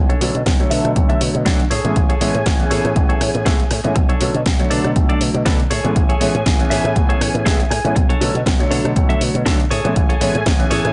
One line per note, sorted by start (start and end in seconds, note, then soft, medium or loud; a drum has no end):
0.00 0.13 B1 medium
0.09 0.40 D4 medium
0.09 0.40 A4 medium
0.09 0.40 C#5 medium
0.09 closed hi-hat soft
0.21 0.30 B2 medium
0.21 0.32 D3 medium
0.21 0.32 F#3 medium
0.21 0.32 A3 medium
0.21 0.33 C#4 medium
0.21 open hi-hat loud
0.35 0.42 B2 medium
0.35 closed hi-hat soft
0.46 0.63 B1 medium
0.46 kick loud
0.46 snare loud
0.46 closed hi-hat medium
0.59 0.93 D3 medium
0.59 0.93 F#3 medium
0.59 0.93 A3 medium
0.59 0.94 C#5 medium
0.59 closed hi-hat soft
0.70 0.80 B2 medium
0.70 0.90 D4 medium
0.70 0.90 A4 medium
0.70 0.90 E5 loud
0.70 open hi-hat loud
0.85 0.92 B2 medium
0.85 cross-stick medium
0.85 closed hi-hat soft
0.95 1.13 B1 medium
0.95 1.43 D3 medium
0.95 1.43 F#3 medium
0.95 1.43 A3 medium
0.95 1.43 C#5 medium
0.95 kick loud
0.95 closed hi-hat medium
1.09 1.21 D4 loud
1.09 1.21 A4 medium
1.09 1.21 E5 loud
1.09 closed hi-hat soft
1.21 1.30 B2 medium
1.21 open hi-hat loud
1.34 1.42 B2 medium
1.34 muted clean electric guitar stroke soft
1.34 closed hi-hat soft
1.45 1.63 B1 medium
1.45 1.57 D3 loud
1.45 1.57 F#3 medium
1.45 1.57 A3 medium
1.45 1.59 D4 medium
1.45 1.57 D4 loud
1.45 1.60 A4 medium
1.45 1.59 C#5 medium
1.45 kick loud
1.45 snare loud
1.45 closed hi-hat medium
1.60 closed hi-hat soft
1.70 1.80 A2 loud
1.70 2.01 G#4 medium
1.70 2.01 A4 medium
1.70 2.01 C#5 medium
1.70 3.94 G#5 medium
1.70 open hi-hat loud
1.84 1.92 A2 loud
1.84 2.00 E3 medium
1.84 2.00 G#3 medium
1.84 2.00 B3 medium
1.84 2.00 C#4 medium
1.84 closed hi-hat soft
1.96 2.13 A1 medium
1.96 kick loud
1.96 closed hi-hat medium
2.09 2.40 G#4 medium
2.09 2.40 A4 medium
2.09 2.40 C#5 medium
2.09 closed hi-hat soft
2.20 2.30 A2 medium
2.20 2.32 E3 medium
2.20 2.32 G#3 medium
2.20 2.32 B3 medium
2.20 2.32 C#4 medium
2.20 open hi-hat loud
2.34 2.42 A2 medium
2.34 closed hi-hat soft
2.46 2.63 A1 medium
2.46 kick loud
2.46 snare loud
2.46 closed hi-hat medium
2.59 2.93 E3 medium
2.59 2.93 B3 medium
2.59 2.93 C#4 medium
2.59 closed hi-hat soft
2.71 2.80 A2 medium
2.71 2.90 G#4 medium
2.71 2.90 A4 medium
2.71 2.90 C#5 medium
2.71 snare soft
2.71 open hi-hat loud
2.84 2.92 A2 medium
2.84 cross-stick medium
2.84 closed hi-hat soft
2.95 3.13 A1 medium
2.95 3.43 E3 medium
2.95 3.43 B3 medium
2.95 3.43 C#4 medium
2.95 kick loud
2.95 closed hi-hat medium
3.09 3.21 G#4 medium
3.09 3.21 A4 medium
3.09 3.21 C#5 loud
3.09 closed hi-hat soft
3.21 3.30 A2 medium
3.21 cross-stick medium
3.21 open hi-hat loud
3.34 3.42 A2 medium
3.34 muted clean electric guitar stroke soft
3.34 closed hi-hat soft
3.45 3.63 A1 medium
3.45 3.57 E3 loud
3.45 3.57 G#3 medium
3.45 3.57 B3 medium
3.45 3.57 E4 loud
3.45 3.60 G#4 medium
3.45 3.60 A4 medium
3.45 3.60 C#5 medium
3.45 kick loud
3.45 snare loud
3.45 closed hi-hat medium
3.60 closed hi-hat soft
3.70 3.80 A2 loud
3.70 muted clean electric guitar stroke soft
3.70 cross-stick medium
3.70 open hi-hat loud
3.84 3.92 A2 loud
3.84 3.94 E3 medium
3.84 3.94 G#3 medium
3.84 3.94 B3 medium
3.84 3.95 C#4 medium
3.84 muted clean electric guitar stroke soft
3.84 closed hi-hat soft
3.96 4.13 B1 medium
3.96 muted clean electric guitar stroke loud
3.96 kick loud
3.96 closed hi-hat medium
4.09 4.40 D4 medium
4.09 4.40 A4 medium
4.09 4.40 C#5 medium
4.09 closed hi-hat soft
4.20 4.30 B2 medium
4.20 4.32 D3 medium
4.20 4.32 F#3 medium
4.20 4.32 A3 medium
4.20 4.32 C#4 medium
4.20 open hi-hat loud
4.34 4.42 B2 medium
4.34 closed hi-hat soft
4.46 4.63 B1 medium
4.46 kick loud
4.46 snare loud
4.46 closed hi-hat medium
4.59 4.93 D3 medium
4.59 4.93 F#3 medium
4.59 4.93 A3 medium
4.59 4.93 C#5 medium
4.59 closed hi-hat soft
4.70 4.80 B2 medium
4.70 4.90 D4 medium
4.70 4.90 A4 medium
4.70 4.90 D5 medium
4.70 open hi-hat loud
4.84 4.92 B2 medium
4.84 cross-stick medium
4.84 closed hi-hat soft
4.95 5.13 B1 medium
4.95 5.43 D3 medium
4.95 5.43 F#3 medium
4.95 5.43 A3 medium
4.95 kick loud
4.95 closed hi-hat medium
5.09 5.21 D4 medium
5.09 5.21 A4 medium
5.09 5.21 D5 loud
5.09 closed hi-hat soft
5.21 5.30 B2 medium
5.21 open hi-hat loud
5.34 5.42 B2 medium
5.34 muted clean electric guitar stroke soft
5.34 closed hi-hat soft
5.45 5.63 B1 medium
5.45 5.57 D3 medium
5.45 5.57 F#3 medium
5.45 5.57 A3 medium
5.45 5.60 D4 medium
5.45 5.57 D4 loud
5.45 5.60 A4 medium
5.45 5.60 B4 medium
5.45 kick loud
5.45 snare loud
5.45 closed hi-hat medium
5.60 closed hi-hat soft
5.70 5.80 A2 medium
5.70 6.01 G#4 medium
5.70 6.01 A4 medium
5.70 6.01 C#5 loud
5.70 7.94 G#5 medium
5.70 open hi-hat loud
5.84 5.92 A2 loud
5.84 6.00 E3 medium
5.84 6.00 G#3 medium
5.84 6.00 B3 medium
5.84 6.00 C#4 medium
5.84 closed hi-hat soft
5.96 6.13 A1 medium
5.96 kick loud
5.96 closed hi-hat medium
6.09 6.40 G#4 medium
6.09 6.40 A4 medium
6.09 6.40 C#5 medium
6.09 closed hi-hat soft
6.20 6.30 A2 medium
6.20 6.32 E3 medium
6.20 6.32 G#3 medium
6.20 6.32 B3 medium
6.20 6.32 C#4 medium
6.20 open hi-hat medium
6.34 6.42 A2 medium
6.34 closed hi-hat soft
6.46 6.63 A1 medium
6.46 kick loud
6.46 snare loud
6.46 closed hi-hat medium
6.59 6.93 E3 medium
6.59 6.93 B3 medium
6.59 6.93 C#4 medium
6.59 closed hi-hat soft
6.70 6.80 A2 medium
6.70 6.90 G#4 medium
6.70 6.90 A4 medium
6.70 6.90 E5 loud
6.70 snare soft
6.70 open hi-hat loud
6.84 6.92 A2 medium
6.84 cross-stick medium
6.84 closed hi-hat soft
6.95 7.13 A1 medium
6.95 7.43 E3 medium
6.95 7.43 B3 medium
6.95 7.43 C#4 medium
6.95 kick loud
6.95 closed hi-hat medium
7.09 7.21 G#4 medium
7.09 7.20 A4 loud
7.09 7.19 C#5 loud
7.09 closed hi-hat soft
7.21 7.30 A2 medium
7.21 7.33 C#5 medium
7.21 cross-stick medium
7.21 open hi-hat loud
7.34 7.42 A2 medium
7.34 muted clean electric guitar stroke soft
7.34 closed hi-hat soft
7.45 7.63 A1 medium
7.45 7.57 E3 loud
7.45 7.57 G#3 medium
7.45 7.57 B3 medium
7.45 7.57 E4 loud
7.45 7.60 G#4 medium
7.45 7.60 A4 medium
7.45 7.60 B4 medium
7.45 7.69 E5 medium
7.45 kick loud
7.45 snare loud
7.45 closed hi-hat medium
7.60 closed hi-hat soft
7.70 7.80 A2 loud
7.70 7.94 G#5 medium
7.70 muted clean electric guitar stroke soft
7.70 cross-stick medium
7.70 open hi-hat loud
7.84 7.92 A2 loud
7.84 7.94 E3 medium
7.84 7.95 G#3 medium
7.84 7.95 B3 medium
7.84 7.95 C#4 medium
7.84 muted clean electric guitar stroke soft
7.84 closed hi-hat soft
7.96 8.13 B1 medium
7.96 muted clean electric guitar stroke loud
7.96 kick loud
7.96 closed hi-hat loud
8.09 8.40 D4 medium
8.09 8.40 A4 medium
8.09 8.40 C#5 medium
8.09 closed hi-hat soft
8.21 8.30 B2 medium
8.21 8.32 D3 medium
8.21 8.32 F#3 medium
8.21 8.32 A3 medium
8.21 8.32 C#4 medium
8.21 open hi-hat medium
8.34 8.42 B2 medium
8.34 closed hi-hat soft
8.46 8.63 B1 loud
8.46 kick loud
8.46 snare loud
8.46 closed hi-hat loud
8.59 8.93 D3 medium
8.59 8.93 F#3 medium
8.59 8.93 A3 medium
8.59 8.93 C#5 medium
8.59 closed hi-hat soft
8.71 8.80 B2 medium
8.71 8.90 D4 medium
8.71 8.90 A4 medium
8.71 8.90 C#5 medium
8.71 open hi-hat medium
8.84 8.92 B2 medium
8.84 cross-stick medium
8.84 closed hi-hat soft
8.96 9.13 B1 medium
8.96 9.43 D3 medium
8.96 9.43 F#3 medium
8.96 9.43 A3 medium
8.96 9.44 C#5 medium
8.96 kick loud
8.96 closed hi-hat medium
9.09 9.21 D4 loud
9.09 9.21 A4 medium
9.09 9.21 E5 loud
9.09 closed hi-hat soft
9.21 9.30 B2 medium
9.21 open hi-hat medium
9.34 9.42 B2 medium
9.34 muted clean electric guitar stroke soft
9.34 closed hi-hat soft
9.45 9.63 B1 medium
9.45 9.57 D3 loud
9.45 9.57 F#3 medium
9.45 9.57 A3 medium
9.45 9.60 D4 medium
9.45 9.57 D4 loud
9.45 9.60 A4 medium
9.45 9.60 C#5 medium
9.45 kick loud
9.45 snare loud
9.45 closed hi-hat medium
9.60 closed hi-hat soft
9.70 9.80 A2 medium
9.70 10.01 G#4 loud
9.70 10.01 A4 medium
9.70 10.01 C#5 medium
9.70 10.93 G#5 medium
9.70 open hi-hat loud
9.84 9.92 A2 loud
9.84 10.00 E3 medium
9.84 10.00 G#3 medium
9.84 10.00 B3 medium
9.84 10.00 C#4 medium
9.84 closed hi-hat soft
9.96 10.13 A1 loud
9.96 kick loud
9.96 closed hi-hat medium
10.09 10.40 G#4 medium
10.09 10.40 A4 medium
10.09 10.40 C#5 medium
10.09 closed hi-hat soft
10.21 10.30 A2 medium
10.21 10.32 E3 medium
10.21 10.32 G#3 medium
10.21 10.32 B3 medium
10.21 10.32 C#4 medium
10.21 open hi-hat loud
10.35 10.42 A2 medium
10.35 closed hi-hat soft
10.46 10.63 A1 medium
10.46 kick loud
10.46 snare loud
10.46 closed hi-hat loud
10.59 10.93 E3 medium
10.59 10.93 B3 medium
10.59 10.93 C#4 medium
10.59 closed hi-hat soft
10.70 10.80 A2 medium
10.70 10.90 G#4 medium
10.70 10.90 A4 medium
10.70 10.90 C#5 medium
10.70 snare soft
10.70 open hi-hat medium
10.85 10.92 A2 medium
10.85 cross-stick medium
10.85 closed hi-hat soft